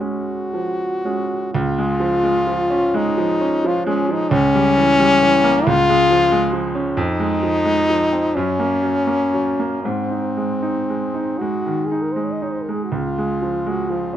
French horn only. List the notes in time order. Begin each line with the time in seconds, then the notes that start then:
0.00 F#4
1.54 F4
2.97 D#4
3.67 F4
3.87 C#4
4.12 D#4
4.31 C#4
5.66 F4
6.97 D#4
8.35 C#4
9.83 C4
11.38 F#4
11.86 G#4
12.02 A#4
12.13 C5
12.24 C#5
12.32 D#5
12.43 C#5
12.52 C5
12.62 A#4
12.72 G#4
12.84 F#4
12.94 F4
13.69 F#4
13.90 F4